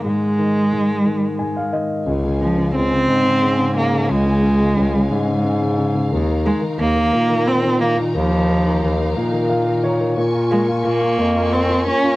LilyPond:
<<
  \new Staff \with { instrumentName = "String section" } { \time 6/8 \key des \major \tempo 4. = 59 << { r2. | <des aes' aes''>2.~ | <des aes' aes''>2. | <ees' bes' bes''>2.~ |
<ees' bes' bes''>2. | <f' bes' des'''>2. | } \\ { r2. | f''2.~ | f''2.~ | f''2. |
f''2. | aes''2. | } >> }
  \new Staff \with { instrumentName = "Cello" } { \time 6/8 \key des \major aes2~ aes8 r8 | r8 f8 c'4. bes8 | aes2 r4 | r8 aes8 bes4 c'8 bes8 |
f4. r4. | r8 aes8 bes4 c'8 des'8 | }
  \new Staff \with { instrumentName = "Grand piano" } { \time 6/8 \key des \major r2 aes''16 f''16 ees''8 | r2. | r2. | r2. |
r2 f''8 des''8 | r2. | }
  \new Staff \with { instrumentName = "Grand piano" } { \clef bass \time 6/8 \key des \major <aes, ees>8 ees8 aes,8 ees8 aes,8 ees8 | des16 des16 des16 des16 des16 des16 aes16 des16 des16 des16 des16 des16 | des16 des16 des16 des16 des16 des16 aes16 des16 des16 des16 des16 des16 | ees16 ees16 ees16 ees16 ees16 ees16 bes16 ees16 ees16 ees16 ees16 ees16 |
ees16 ees16 ees16 ees16 ees16 ees16 bes16 ees16 ees16 ees16 ees16 ees16 | bes16 f'16 bes16 f'16 bes16 f'16 bes16 f'16 bes16 f'16 bes16 f'16 | }
  \new Staff \with { instrumentName = "Bass clarinet" } { \clef bass \time 6/8 \key des \major r2. | des,4 des,8 aes,4. | des,4 des,8 aes,4. | ees,8 r8 ees,8 bes,4. |
ees,4 ees,8 bes,4. | bes,4 bes,8 f,4 r8 | }
>>